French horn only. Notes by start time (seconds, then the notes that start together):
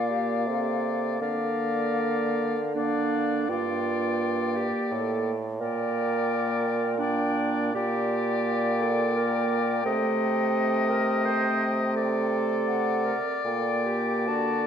Already playing: A#3
1.21 A#3
2.75 A#3
3.49 A#3
5.60 A#3
6.98 A#3
7.74 A#3
9.85 A3
13.45 A#3